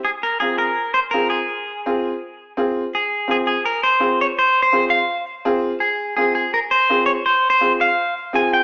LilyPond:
<<
  \new Staff \with { instrumentName = "Clean electric guitar" } { \time 4/4 \key f \minor \tempo 4 = 167 aes'8 bes'8 aes'8 bes'4 c''8 bes'8 aes'8~ | aes'2. r4 | aes'4 aes'8 aes'8 bes'8 c''4 des''8 | \tuplet 3/2 { c''4 c''8~ } c''8 f''4 r4. |
aes'4 aes'8 aes'8 bes'8 c''4 des''8 | \tuplet 3/2 { c''4 c''8~ } c''8 f''4 r8 aes''8 g''8 | }
  \new Staff \with { instrumentName = "Upright piano" } { \time 4/4 \key f \minor r4 <c' f' aes'>8 r4. <c' f' aes'>8 r8 | r4 <c' f' aes'>8 r4. <c' f' aes'>8 r8 | r4 <c' f' aes'>8 r4. <c' f' aes'>8 r8 | r4 <c' f' aes'>8 r4. <c' f' aes'>8 r8 |
r4 <c' f' aes'>8 r4. <c' f' aes'>8 r8 | r4 <c' f' aes'>8 r4. <c' f' aes'>8 r8 | }
>>